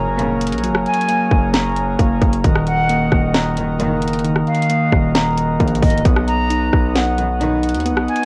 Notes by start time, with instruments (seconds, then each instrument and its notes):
Already playing: 808-style bass F#1, tine electric piano F#3 A#3 A#5, accordion F#3 C#4 G#4 A#4
0.19 string section A#1 G#2 C#3, tine electric piano A#3, closed hi-hat
0.41 closed hi-hat
0.47 closed hi-hat
0.53 808-style bass A#1, closed hi-hat
0.58 closed hi-hat
0.64 tine electric piano F#3, closed hi-hat
0.69 808-style bass F#1
0.75 cross-stick
0.86 flute G#5, closed hi-hat
0.94 closed hi-hat
1.01 closed hi-hat
1.09 tine electric piano A#3, closed hi-hat
1.31 808-style bass F#1, kick
1.54 tine electric piano A#5, snare, closed hi-hat
1.76 closed hi-hat
1.99 808-style bass F#1, tine electric piano A#3, kick, closed hi-hat
2.22 808-style bass F#1, kick, closed hi-hat
2.33 closed hi-hat
2.44 808-style bass D#1, tine electric piano D#3, accordion D#3 D#4 F#4, kick, closed hi-hat
2.55 cross-stick
2.67 flute F#5, closed hi-hat
2.89 tine electric piano A#3, closed hi-hat
3.12 808-style bass D#1, kick, cross-stick
3.34 tine electric piano A#5, snare, closed hi-hat
3.57 string section A#1 F#2 D#3, closed hi-hat
3.79 808-style bass F#1, string section A#1 F#2 D#3, tine electric piano A#3, closed hi-hat
4.02 closed hi-hat
4.08 closed hi-hat
4.13 closed hi-hat
4.19 closed hi-hat
4.25 tine electric piano D#3, closed hi-hat
4.36 cross-stick
4.47 flute F5, closed hi-hat
4.55 closed hi-hat
4.62 closed hi-hat
4.70 tine electric piano A#3, closed hi-hat
4.92 808-style bass D#1, kick, cross-stick
5.15 tine electric piano A#5, snare, closed hi-hat
5.37 closed hi-hat
5.60 808-style bass A#1, tine electric piano A#3, kick, closed hi-hat
5.68 closed hi-hat
5.75 closed hi-hat
5.82 808-style bass C#1, flute D#5, kick, closed hi-hat, open hi-hat
5.90 closed hi-hat
5.98 closed hi-hat
6.05 808-style bass B1, tine electric piano B3, accordion B3 F#4 D#5 F#5, kick, closed hi-hat
6.16 cross-stick
6.28 flute A#5, closed hi-hat
6.50 tine electric piano D#4, closed hi-hat
6.73 808-style bass B1, kick, cross-stick
6.95 tine electric piano F#5, snare, closed hi-hat
7.18 string section B1 F#2 D#3, closed hi-hat
7.40 string section B1 F#2 D#3, tine electric piano D#4, closed hi-hat
7.63 closed hi-hat
7.69 closed hi-hat
7.74 808-style bass D#2, closed hi-hat
7.80 closed hi-hat
7.86 tine electric piano B3, closed hi-hat
7.91 808-style bass B1
7.97 cross-stick
8.08 flute G#5, closed hi-hat
8.16 closed hi-hat